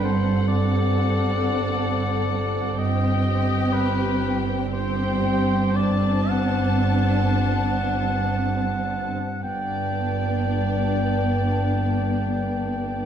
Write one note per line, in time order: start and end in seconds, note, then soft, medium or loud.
0.00 2.76 G1 soft
0.00 2.75 G2 medium
0.00 2.78 A4 soft
0.00 0.47 C5 medium
0.00 2.79 F#5 medium
0.05 2.79 C4 soft
0.48 2.75 D5 medium
2.78 9.08 G1 medium
2.78 9.08 G2 medium
2.78 4.68 C4 soft
2.78 4.71 G4 medium
2.78 3.74 D#5 medium
2.78 4.67 G5 medium
3.73 4.40 B4 medium
4.72 5.73 C4 medium
4.72 5.73 G4 medium
4.72 5.77 C5 medium
4.72 5.73 G5 medium
5.76 9.09 C4 medium
5.76 9.13 D4 medium
5.76 6.31 D5 medium
5.76 9.13 A5 medium
6.30 9.42 F#5 medium
9.41 13.05 G1 soft
9.41 13.05 G2 soft
9.41 13.05 B3 soft
9.41 13.05 D4 soft
9.41 13.05 D5 soft
9.41 13.05 G5 soft